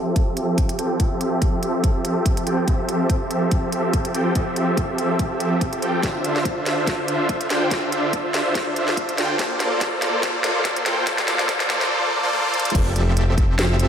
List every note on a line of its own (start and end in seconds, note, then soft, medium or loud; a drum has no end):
0.00 0.77 F3 medium
0.00 0.77 C4 medium
0.00 0.77 G4 medium
0.00 0.77 A4 medium
0.00 0.77 E5 medium
0.16 kick loud
0.16 closed hi-hat medium
0.37 closed hi-hat medium
0.58 kick loud
0.58 closed hi-hat medium
0.69 closed hi-hat medium
0.79 0.98 F3 medium
0.79 0.97 C4 medium
0.79 0.98 G4 medium
0.79 0.98 A4 medium
0.79 0.97 G5 medium
0.79 closed hi-hat medium
1.00 2.44 F3 medium
1.00 2.44 C4 medium
1.00 2.44 G4 medium
1.00 2.44 A4 medium
1.00 2.44 E5 medium
1.00 kick loud
1.00 closed hi-hat medium
1.21 closed hi-hat medium
1.42 kick loud
1.42 closed hi-hat medium
1.63 closed hi-hat medium
1.84 kick medium
1.84 closed hi-hat medium
2.05 closed hi-hat medium
2.26 kick loud
2.26 closed hi-hat medium
2.37 closed hi-hat medium
2.47 2.65 F3 medium
2.47 2.65 C4 medium
2.47 2.65 G4 medium
2.47 2.65 A4 medium
2.47 2.65 G5 medium
2.47 closed hi-hat medium
2.68 4.12 F3 medium
2.68 4.12 C4 medium
2.68 4.12 G4 medium
2.68 4.12 A4 medium
2.68 4.12 E5 medium
2.68 kick loud
2.68 closed hi-hat medium
2.89 closed hi-hat medium
3.10 kick medium
3.10 closed hi-hat medium
3.31 closed hi-hat medium
3.51 kick loud
3.51 closed hi-hat medium
3.72 closed hi-hat medium
3.93 kick loud
3.93 closed hi-hat medium
4.05 closed hi-hat medium
4.15 4.33 F3 medium
4.15 4.33 C4 medium
4.15 4.33 G4 medium
4.15 4.33 A4 medium
4.15 4.33 G5 medium
4.15 closed hi-hat medium
4.35 5.80 F3 medium
4.35 5.80 C4 medium
4.35 5.80 G4 medium
4.35 5.80 A4 medium
4.35 5.80 E5 medium
4.35 kick medium
4.35 closed hi-hat medium
4.56 closed hi-hat medium
4.77 kick loud
4.77 closed hi-hat medium
4.98 closed hi-hat medium
5.19 kick loud
5.19 closed hi-hat medium
5.40 closed hi-hat medium
5.61 kick loud
5.61 closed hi-hat medium
5.73 closed hi-hat medium
5.82 6.01 F3 medium
5.82 6.01 C4 medium
5.82 6.01 G4 medium
5.82 6.01 A4 medium
5.82 6.01 G5 medium
5.82 closed hi-hat medium
6.03 7.48 D3 medium
6.03 7.48 D4 medium
6.03 7.48 F4 medium
6.03 7.48 C5 medium
6.03 7.48 E5 medium
6.03 kick loud
6.03 snare soft
6.03 closed hi-hat medium
6.24 closed hi-hat medium
6.36 snare soft
6.45 kick loud
6.45 closed hi-hat medium
6.66 snare medium
6.66 closed hi-hat medium
6.87 kick loud
6.87 snare medium
6.87 closed hi-hat medium
7.08 closed hi-hat medium
7.29 kick loud
7.29 closed hi-hat medium
7.41 closed hi-hat medium
7.50 7.69 D3 medium
7.50 7.69 D4 medium
7.50 7.69 F4 medium
7.50 7.69 C5 medium
7.50 7.69 G5 medium
7.50 snare medium
7.50 closed hi-hat medium
7.71 9.16 D3 medium
7.71 9.16 D4 medium
7.71 9.16 F4 medium
7.71 9.16 C5 medium
7.71 9.16 E5 medium
7.71 kick loud
7.71 snare medium
7.71 closed hi-hat medium
7.92 closed hi-hat medium
8.13 kick loud
8.13 closed hi-hat medium
8.34 snare medium
8.34 closed hi-hat medium
8.55 kick loud
8.55 snare medium
8.55 closed hi-hat medium
8.76 closed hi-hat medium
8.88 snare medium
8.97 kick loud
8.97 closed hi-hat medium
9.09 closed hi-hat medium
9.18 9.37 D3 medium
9.18 9.37 D4 medium
9.18 9.37 F4 medium
9.18 9.37 C5 medium
9.18 9.37 G5 medium
9.18 snare medium
9.18 closed hi-hat medium
9.39 10.84 A#3 medium
9.39 10.84 F4 medium
9.39 10.84 A4 medium
9.39 10.84 C5 medium
9.39 10.84 D5 medium
9.39 kick medium
9.39 snare medium
9.39 closed hi-hat medium
9.60 snare medium
9.60 closed hi-hat medium
9.81 kick loud
9.81 snare medium
9.81 closed hi-hat medium
10.02 snare medium
10.02 closed hi-hat medium
10.23 kick loud
10.23 snare medium
10.23 closed hi-hat medium
10.44 snare medium
10.44 closed hi-hat medium
10.65 kick loud
10.65 snare medium
10.65 closed hi-hat medium
10.76 closed hi-hat medium
10.86 11.05 A#3 medium
10.86 11.05 F4 medium
10.86 11.05 A4 medium
10.86 11.05 C5 medium
10.86 11.05 G5 medium
10.86 snare medium
10.86 closed hi-hat medium
11.07 12.21 A#3 medium
11.07 12.21 F4 medium
11.07 12.21 A4 medium
11.07 12.21 C5 medium
11.07 12.21 D5 medium
11.07 kick loud
11.07 snare medium
11.07 closed hi-hat medium
11.18 snare medium
11.28 snare loud
11.28 closed hi-hat medium
11.39 snare medium
11.49 kick loud
11.49 snare loud
11.49 closed hi-hat medium
11.60 snare medium
11.70 snare loud
11.70 closed hi-hat medium
11.81 snare medium
12.23 12.30 A#3 loud
12.23 12.30 F4 medium
12.23 12.30 A4 medium
12.23 12.30 C5 medium
12.23 12.30 D5 loud
12.33 12.72 A#3 loud
12.33 12.72 F4 medium
12.33 12.72 A4 medium
12.33 12.72 C5 loud
12.33 12.72 D5 loud
12.54 closed hi-hat medium
12.59 closed hi-hat medium
12.65 closed hi-hat medium
12.70 closed hi-hat medium
12.75 13.88 F1 loud
12.75 13.88 F3 medium
12.75 13.88 C4 medium
12.75 13.88 G4 medium
12.75 13.88 A4 medium
12.75 13.88 E5 medium
12.75 kick loud
12.75 closed hi-hat medium
12.75 crash loud
12.96 closed hi-hat medium
13.17 closed hi-hat medium
13.38 kick loud
13.38 closed hi-hat medium
13.59 snare loud
13.59 closed hi-hat medium
13.80 closed hi-hat medium